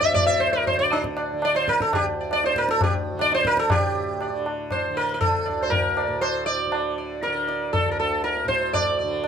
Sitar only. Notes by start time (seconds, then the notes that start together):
0.01 E5
0.14 D5
0.27 E5
0.40 C5
0.53 A#4
0.67 C5
0.79 D5
0.92 D4
1.17 D5
1.45 D5
1.56 C5
1.69 A#4
1.82 A4
1.95 G4
2.21 D5
2.33 D5
2.46 C5
2.58 A#4
2.71 A4
2.84 G4
3.21 D5
3.35 C5
3.47 A#4
3.59 A4
3.72 G4 D5
4.22 D5
4.72 C5
4.97 A#4
5.14 A#4
5.21 A4
5.46 D5
5.63 C5
5.70 A#4
5.97 D5
6.21 C5
6.46 D5
6.98 D5
7.23 A#4
7.48 D5
7.73 A4
7.91 A#4
8.00 A4
8.24 A#4
8.48 C5
8.73 D5
8.99 D5
9.24 D5